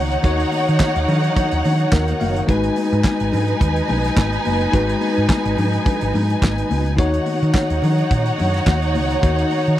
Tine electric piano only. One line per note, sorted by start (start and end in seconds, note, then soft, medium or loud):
0.00 0.19 D#3 medium
0.00 0.19 D#4 medium
0.00 0.23 F#4 medium
0.00 0.20 C#5 medium
0.23 2.44 D#3 medium
0.23 2.44 D#4 medium
0.23 2.45 F#4 medium
0.23 2.45 C#5 medium
1.92 2.18 A#4 medium
2.20 2.46 F5 medium
2.47 4.68 G#3 medium
2.47 4.69 D#4 medium
2.47 4.70 F#4 medium
2.47 4.70 B4 medium
4.72 6.93 G#3 medium
4.72 6.94 D#4 medium
4.72 6.94 F#4 medium
4.72 6.95 B4 medium
6.96 9.18 D#3 medium
6.96 9.18 D#4 medium
6.96 9.19 F#4 medium
6.96 9.19 C#5 medium
9.21 9.79 D#3 medium
9.21 9.79 D#4 medium
9.21 9.79 F#4 medium
9.21 9.79 C#5 medium